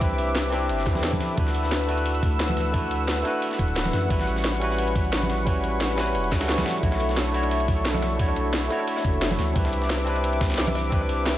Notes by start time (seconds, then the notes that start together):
Already playing: C2 G4 B4 E5 D6
0.00 C4 D4 E4 G4 B4, kick, closed hi-hat, ride
0.18 closed hi-hat, ride
0.35 snare, closed hi-hat, ride
0.50 C4 D4 E4 G4, snare, closed hi-hat, ride
0.55 B4
0.69 G1, closed hi-hat, ride
0.78 snare
0.86 E2, kick, snare, closed hi-hat, ride
0.93 C4 D4 E4 G4, snare, closed hi-hat, high conga
0.98 A4
1.03 snare, closed hi-hat, ride
1.12 kick, high conga
1.20 snare, closed hi-hat, ride
1.35 D2 A3 D4 E4 F#4 F#5 E6, kick, closed hi-hat, ride
1.40 B4
1.46 snare
1.55 closed hi-hat, ride
1.64 snare
1.71 snare, closed hi-hat, ride
1.86 A3 D4 E4 F#4, closed hi-hat, ride
1.91 B4
1.98 ride
2.06 closed hi-hat, ride
2.15 ride
2.23 D2, kick, closed hi-hat, ride
2.32 closed hi-hat
2.40 snare, closed hi-hat, ride
2.49 ride, high conga
2.57 snare, closed hi-hat, ride
2.72 A3 D4 E4 F#4, kick, closed hi-hat, ride
2.76 B4
2.91 closed hi-hat, ride
3.08 snare, closed hi-hat, ride
3.23 A3 D4 E4 F#4, snare, closed hi-hat, ride
3.27 B4
3.42 closed hi-hat, ride
3.51 snare
3.59 D1, kick, closed hi-hat, ride
3.68 closed hi-hat
3.76 snare, closed hi-hat, ride
3.85 snare, high conga
3.93 F#2, snare, closed hi-hat, ride
4.08 A1 G3 C#4 E4 F#4 B4 C#6, kick, closed hi-hat, ride
4.13 B4
4.19 snare
4.27 closed hi-hat, ride
4.36 snare
4.44 snare, closed hi-hat, ride
4.59 G3 C#4 E4 F#4, closed hi-hat, ride
4.64 B4
4.70 snare
4.78 closed hi-hat, ride
4.87 ride
4.95 A1, kick, closed hi-hat, ride
5.05 closed hi-hat
5.13 snare, closed hi-hat, ride
5.22 ride, high conga
5.30 snare, closed hi-hat, ride
5.44 G3 C#4 E4 F#4, kick, closed hi-hat, ride
5.49 B4
5.64 closed hi-hat, ride
5.81 snare, closed hi-hat, ride
5.90 closed hi-hat
5.96 G3 C#4 E4 F#4, snare, closed hi-hat, ride
6.00 B4
6.15 E1, closed hi-hat, ride
6.24 ride
6.32 C#2, kick, snare, closed hi-hat, ride
6.39 G3 C#4 E4 F#4, snare, closed hi-hat, ride
6.43 A4
6.49 snare, closed hi-hat, ride
6.58 snare, ride, high conga
6.66 snare, closed hi-hat, ride
6.81 B1 A3 D4 E4 F#4 A4 E5, kick, closed hi-hat, ride
6.85 C#5
6.92 cross-stick, snare
7.00 closed hi-hat, ride
7.09 snare
7.17 snare, closed hi-hat, ride
7.32 A3 D4 E4 F#4, closed hi-hat, ride
7.36 C#5
7.43 cross-stick, ride
7.51 closed hi-hat, ride
7.60 ride
7.68 B1, kick, closed hi-hat, ride
7.77 closed hi-hat
7.85 snare, closed hi-hat, ride
7.94 cross-stick, ride, high conga
8.02 cross-stick, snare, closed hi-hat, ride
8.17 A3 D4 E4 F#4, kick, closed hi-hat, ride
8.22 C#5
8.28 cross-stick
8.36 closed hi-hat, ride
8.53 snare, closed hi-hat, ride
8.68 A3 D4 E4 F#4, snare, closed hi-hat, ride
8.73 C#5
8.80 cross-stick
8.88 closed hi-hat, ride
8.97 cross-stick, snare
9.05 F#1, kick, closed hi-hat, ride
9.14 closed hi-hat
9.22 snare, closed hi-hat, ride
9.31 snare, high conga
9.39 D2, snare, closed hi-hat, ride
9.53 C2 C4 D4 E4 G4 B4 D6, kick, closed hi-hat, ride
9.58 B4
9.65 cross-stick, snare
9.73 closed hi-hat, ride
9.82 snare
9.90 snare, closed hi-hat, ride
10.05 C4 D4 E4 G4, closed hi-hat, ride
10.09 B4
10.16 cross-stick, ride
10.24 closed hi-hat, ride
10.33 ride
10.41 C2, kick, snare, closed hi-hat, ride
10.50 snare, closed hi-hat, ride
10.54 snare, ride
10.58 snare, closed hi-hat, ride
10.67 cross-stick, ride, high conga
10.75 cross-stick, snare, closed hi-hat, ride
10.90 C4 D4 E4 G4, kick, closed hi-hat, ride
10.95 B4
11.01 cross-stick
11.09 closed hi-hat, ride
11.26 snare, closed hi-hat, ride